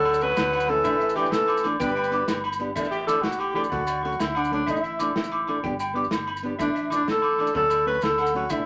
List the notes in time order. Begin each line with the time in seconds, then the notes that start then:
Already playing: D2 F#3 A4
0.05 D5, closed hi-hat, low agogo
0.14 maracas
0.21 F#3 A3 C#4 A4 B4 C#6, closed hi-hat, maracas
0.37 D2, snare, closed hi-hat, low agogo, maracas
0.53 F#5, closed hi-hat, low agogo, maracas
0.60 maracas
0.67 F#3 A3 C#4 A4, closed hi-hat
0.71 E3
0.83 A1 E3 A3 D4 A4 E5, kick, closed hi-hat, low agogo, maracas
1.00 E5, closed hi-hat, maracas
1.09 maracas
1.15 E3 A3 D4 G4 A4 D6, closed hi-hat, low agogo, maracas
1.19 E3
1.26 maracas
1.31 A1 E3 A4, snare, closed hi-hat, maracas
1.47 D6, closed hi-hat, low agogo, maracas
1.57 maracas
1.63 E3 A3 D4 A4 D6, snare, closed hi-hat, low agogo
1.79 G1 G3 B3 D4 G4 B4 G5, kick, closed hi-hat, maracas
1.89 maracas
1.95 G5, closed hi-hat, low agogo
2.04 maracas
2.10 B3 D4 G4 D6, closed hi-hat, maracas
2.28 G1, snare, closed hi-hat, low agogo, maracas
2.44 B5, closed hi-hat, low agogo
2.53 maracas
2.59 B3 D4 G4, closed hi-hat
2.75 A1 E3 A3 D4 A4 E5, kick, crash, low agogo, maracas
2.84 maracas
2.91 G4 E5, closed hi-hat, maracas
3.07 E3 A3 D4 A4 D6, closed hi-hat, low agogo, maracas
3.22 A1 F#4, snare, closed hi-hat
3.32 maracas
3.39 G4 D6, closed hi-hat, low agogo
3.54 E3 A3 D4 G4 A4 D6, closed hi-hat, low agogo
3.64 maracas
3.70 D2 F#3 A3 F#4 A4 D5, muted steel-string acoustic guitar stroke, kick, closed hi-hat
3.87 D5, closed hi-hat, low agogo, maracas
4.03 F#3 A3 C#4 F#4 A4 C#6, closed hi-hat
4.12 maracas
4.20 D2 E4, snare, closed hi-hat, low agogo, maracas
4.35 D4 F#5, closed hi-hat, low agogo, maracas
4.45 maracas
4.50 F#3 A3 C#4 D4 A4, closed hi-hat
4.66 A1 E3 A3 D4 E4 A4 E5, kick, closed hi-hat, low agogo, maracas
4.76 maracas
4.83 E5, closed hi-hat, maracas
4.99 E3 A3 D4 A4 D6, closed hi-hat, low agogo, maracas
5.15 A1 E4, snare, closed hi-hat
5.24 maracas
5.31 D6, closed hi-hat, low agogo
5.47 E3 A3 D4 A4 D6, closed hi-hat, low agogo
5.63 G1 B3 D4 G4 G5, kick, closed hi-hat
5.80 G5, closed hi-hat, low agogo, maracas
5.94 B3 D4 G4 D6, closed hi-hat
6.04 maracas
6.11 G1, snare, closed hi-hat, low agogo, maracas
6.27 B5, closed hi-hat, low agogo
6.37 maracas
6.43 B3 D4 G4, closed hi-hat
6.58 A1 E3 A3 D4 A4 E5, kick, closed hi-hat, low agogo, maracas
6.75 E5, closed hi-hat, maracas
6.90 E3 A3 D4 D6, muted steel-string acoustic guitar stroke, closed hi-hat, low agogo, maracas
6.95 D4
7.07 A1 A4, snare, closed hi-hat
7.22 D6, closed hi-hat, low agogo
7.38 E3 A3 D4 A4 D6, closed hi-hat, low agogo
7.47 maracas
7.54 D2 F#3 A3 C#4 A4 D5, kick, closed hi-hat
7.70 D5, closed hi-hat, low agogo, maracas
7.85 F#3 A3 C#4 A4 B4 C#6, closed hi-hat
7.94 maracas
8.01 D2 A4, snare, closed hi-hat, low agogo, maracas
8.18 A4 F#5, closed hi-hat, low agogo, maracas
8.26 maracas
8.32 F#3 A3 C#4 F#4 A4, closed hi-hat
8.49 A1 E3 A3 D4 E4 A4 E5, kick, closed hi-hat, low agogo, maracas